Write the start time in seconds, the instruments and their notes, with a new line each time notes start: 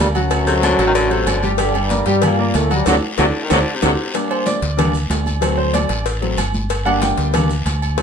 Already playing: grand piano A#4 D5
0.00 fingered electric bass D2, trombone section G2 G3, cowbell, high conga, short guiro
0.15 trombone section F#2 F#3, grand piano F#3 F#4 F#5, low agogo, short guiro, maracas
0.31 cowbell, high conga, low agogo, long guiro, maracas
0.47 baritone saxophone C3, grand piano A3 A4 C5, high conga, maracas
0.63 baritone saxophone D3, cowbell, high conga, low agogo, short guiro, maracas
0.79 fingered electric bass A1, grand piano F#3 F#4 F#5, cowbell, low agogo, short guiro, maracas
0.87 baritone saxophone D#3
0.95 baritone saxophone D3, cowbell, high conga, long guiro, maracas
1.10 baritone saxophone C3, grand piano A3 A4 C5, high conga, low agogo
1.26 fingered electric bass G1, baritone saxophone D3, cowbell, high conga, low agogo, short guiro, maracas
1.43 grand piano G3 G4 G5, high conga, short guiro, maracas
1.58 trombone section D3 D4, grand piano G3 G4 G5, cowbell, high conga, low agogo, long guiro, maracas
1.75 trombone section G2 G3, high conga, low agogo
1.90 grand piano A#3 A#4 D5, cowbell, high conga, short guiro, maracas
2.06 fingered electric bass G2, trombone section G2 G3, grand piano G3 G4 G5, cowbell, high conga, short guiro, maracas
2.22 trombone section A#2 A#3, cowbell, high conga, low conga, low agogo, long guiro, maracas
2.39 grand piano A#3 A#4 D5, high conga
2.54 fingered electric bass D2, trombone section A2 A3, cowbell, high conga, low timbale, low agogo, short guiro, maracas
2.70 trombone section G2 G3, grand piano F#3 F#4 F#5, low agogo, short guiro, maracas
2.86 fingered electric bass D2, trombone section C3 D3 F#3, grand piano D4 F#4 A4, cowbell, high conga, high timbale, long guiro, maracas
3.18 fingered electric bass D2, trombone section C3 D3 F#3, baritone saxophone D3, grand piano D4 F#4 A4, cowbell, high conga, high timbale, long guiro, maracas
3.43 baritone saxophone D#3
3.50 fingered electric bass D2, trombone section C3 D3 F#3, baritone saxophone D3, grand piano D4 F#4 A4, cowbell, high conga, high timbale, long guiro, maracas
3.75 baritone saxophone C3
3.82 fingered electric bass D2, baritone saxophone C3, trombone section C3 D3 F#3, grand piano D4 F#4 A4, cowbell, high conga, high timbale, long guiro, maracas
4.14 grand piano G3 A#3 D4, cowbell, high conga, low agogo, long guiro, maracas
4.30 grand piano C5, high conga, low agogo
4.46 grand piano D5, cowbell, high conga, short guiro, maracas
4.62 fingered electric bass D2, cowbell, high conga, short guiro, maracas
4.77 grand piano G3 A#3 D4, cowbell, high conga, low conga, low agogo, long guiro, maracas
4.94 high conga, maracas
5.10 fingered electric bass D2, cowbell, high conga, low timbale, low agogo, short guiro, maracas
5.26 high conga, low agogo, short guiro, maracas
5.41 grand piano F#3 A3 C4, cowbell, low agogo, long guiro, maracas
5.58 grand piano C5, high conga
5.73 grand piano D5, cowbell, high conga, low agogo, short guiro, maracas
5.89 fingered electric bass A1, cowbell, high conga, low agogo, short guiro, maracas
6.06 cowbell, high conga, long guiro, maracas
6.22 grand piano F#3 A3 C4, high conga, low agogo
6.38 fingered electric bass G1, cowbell, high conga, low agogo, short guiro, maracas
6.54 high conga, short guiro, maracas
6.70 cowbell, high conga, low agogo, long guiro, maracas
6.85 grand piano G3 A#3 D4 F#5, high conga, low agogo
7.02 grand piano G5, cowbell, high conga, short guiro, maracas
7.18 fingered electric bass D2, cowbell, short guiro, maracas
7.34 grand piano G3 A#3 D4, cowbell, high conga, low conga, low agogo, long guiro, maracas
7.50 high conga, maracas
7.66 fingered electric bass D2, cowbell, high conga, low agogo, short guiro, maracas
7.82 low agogo, short guiro, maracas
7.98 grand piano F#3 A3 C4, cowbell, high bongo, high conga, low agogo, long guiro, maracas